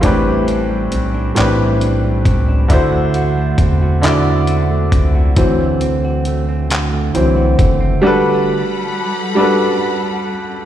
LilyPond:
<<
  \new Staff \with { instrumentName = "String section" } { \time 6/8 \key g \major \tempo 4. = 45 r2. | r2. | r2. | <g a' fis'' b''>2. | }
  \new Staff \with { instrumentName = "Grand piano" } { \time 6/8 \key g \major <a, e c' d' g' b'>4 r8 <a, e c' d' g' b'>4 r8 | <d d' e' fis' c''>4 r8 <d d' e' fis' d''>4 r8 | <e fis c'>2 <e fis c'>8 r8 | <g d' fis' a' b'>4 r8 <g d' fis' a' b'>4 r8 | }
  \new Staff \with { instrumentName = "Clean electric guitar" } { \time 6/8 \key g \major a,16 g16 d'16 g16 c'16 d'16 a,16 g16 d'16 g16 c'16 d'16 | d16 a16 fis'16 a16 c'16 fis'16 d16 a16 fis'16 a16 c'16 fis'16 | <d fis'>16 a16 c'16 fis'16 a16 c'16 <d fis'>16 a16 c'16 fis'16 a16 c'16 | r2. | }
  \new Staff \with { instrumentName = "Analog synth bass" } { \clef bass \time 6/8 \key g \major a,,4 b,,8 b,,4 cis,8 | d,4 e,4. cis,8 | d,2 c,8 fis,,8 | r2. | }
  \new DrumStaff \with { instrumentName = "Drums" } \drummode { \time 6/8 <hh bd>8 hh8 hh8 <hc hh>8 hh8 <hh bd>8 | <hh bd>8 hh8 <hh bd>8 <hc hh>8 hh8 <hh bd>8 | <hh bd>8 hh8 hh8 <hc hh>8 hh8 <hh bd>8 | r4. r4. | }
>>